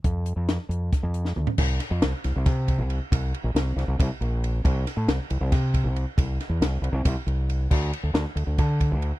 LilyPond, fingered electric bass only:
\new Staff \with { instrumentName = "Fingered electric bass" } { \clef bass \time 7/8 \key c \mixolydian \tempo 4 = 137 f,8. f,8 r16 f,8 r16 f,8. d,16 r16 | c,8 r16 f,16 c,16 r16 c,16 c,16 c8. c,8 r16 | c,8 r16 bes,,16 c,8 c,16 c,16 c,16 r16 bes,,4 | c,8 r16 a,16 c,16 r16 c,16 c,16 c8. c,8 r16 |
c,8 r16 e,16 c,8 c,16 c,16 c,16 r16 c,4 | d,8 r16 d,16 d,16 r16 d,16 d,16 d8. d,8 r16 | }